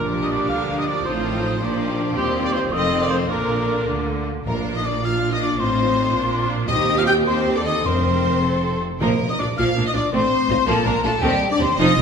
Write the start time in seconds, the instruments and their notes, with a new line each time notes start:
Already playing: double bass section A#1, timpani A#2, cello section A#2, french horn section F3 D4, viola section G3 D4, violin section D4 A#4, clarinet F4, flute D6
0.22 violin section D#5, cor anglais D#5
0.31 cor anglais D5, violin section D5
0.49 double bass section D2, cello section D3, violin section A#3 A#4 F5, clarinet D4, cor anglais F5
0.78 cor anglais D#5, violin section D#5
0.87 cor anglais D5, violin section D5
1.05 double bass section A1, cello section A2, viola section F3 F4, violin section C4 A4 C5, french horn section D#4, clarinet D#4, cor anglais C5, flute D#6
1.24 viola section D#3
1.43 viola section F3
1.61 double bass section A#1, cello section A#2, viola section F3 A#3, violin section D4 G4, french horn section D4, clarinet F4, flute D6
1.79 violin section D#4
1.97 violin section D4
2.16 cello section D#2, double bass section D#2, french horn section G3 C4, violin section C4 G4, viola section C4, cor anglais G4, clarinet G4, flute C6
2.44 cor anglais D5, violin section D5
2.53 cor anglais C5, violin section C5
2.72 double bass section F1, cello section F2, viola section D#3 C4, french horn section A3 C4, violin section C4 F4 D#5, clarinet A4, cor anglais D#5, flute C6
3.02 violin section D5, cor anglais D5
3.10 cor anglais C5, violin section C5
3.29 double bass section A#1, cello section A#2, viola section D3 D4, violin section A#3 F4 A#4, french horn section A#3 D4, clarinet A#4, cor anglais A#4, flute D6
3.88 double bass section D2, cello section D3
4.47 double bass section A#1, timpani A#2, cello section A#2, french horn section A#3, viola section D4 F4, violin section A#4, flute A#5
4.76 french horn section D#4, violin section D#5, flute D#6
4.85 french horn section D4, violin section D5, flute D6
5.04 viola section D4 F4, french horn section F4, violin section F5, flute F6
5.32 french horn section D#4, violin section D#5, flute D#6
5.41 french horn section D4, violin section D5, flute D6
5.59 double bass section A1, cello section A2, french horn section C4, viola section D#4 F4, violin section C5, flute C6
6.14 double bass section A#1, cello section A#2, viola section D4 F4
6.69 cello section D#2, double bass section D#2, viola section C4 G4, french horn section D#4, violin section D#5, flute D#6
6.98 french horn section F4, violin section F5, flute F6
7.07 french horn section G4, violin section G5, flute G6
7.26 viola section C4 G4, french horn section C4, violin section C5, flute C6
7.55 french horn section D4, viola section A4, violin section D5, flute D6
7.65 french horn section D#4, violin section D#5, flute D#6
7.84 double bass section F1, timpani F2, cello section F2, viola section C4 A#4, french horn section C4, violin section C5, flute C6
8.42 viola section C4 A4
9.01 double bass section A#1, timpani A#2, cello section A#2, viola section F3 A#3, french horn section A#3, violin section A#4, flute A#5
9.29 french horn section D#4, violin section D#5, flute D#6
9.39 double bass section A#1, cello section A#2, viola section D4 F4, french horn section D4, violin section D5, flute D6
9.58 double bass section A#1, cello section A#2, viola section F3 A#3, french horn section F4, violin section F5, flute F6
9.76 double bass section A#1, cello section A#2, viola section A#3 D4
9.86 french horn section D#4, violin section D#5, flute D#6
9.94 double bass section A#1, cello section A#2, viola section D4 F4, french horn section D4, violin section D5, flute D6
10.13 double bass section A1, cello section A2, viola section A3 C4, french horn section C4, violin section C5, flute C6
10.49 double bass section A1, cello section A2, viola section D#4 F4
10.67 double bass section A#1, cello section A#2, viola section F3 A#3, french horn section A3, violin section A4, flute A5
10.85 double bass section A#1, cello section A#2, french horn section A#3, viola section A#3 D4, violin section A#4, flute A#5
11.03 double bass section A#1, cello section A#2, french horn section A3, viola section D4 F4, violin section A4, flute A5
11.22 cello section D#2, double bass section D#2, viola section D#3 C4, french horn section G3, violin section G4, flute G5
11.50 french horn section D4, violin section D5, flute D6
11.59 double bass section D#2, cello section D#2, viola section C4 G4, french horn section C4, violin section C5, flute C6
11.78 double bass section F1, cello section F2, viola section F3 D#4, french horn section D#4, violin section D#5, flute D#6
11.97 double bass section F1, cello section F2, viola section A3 F4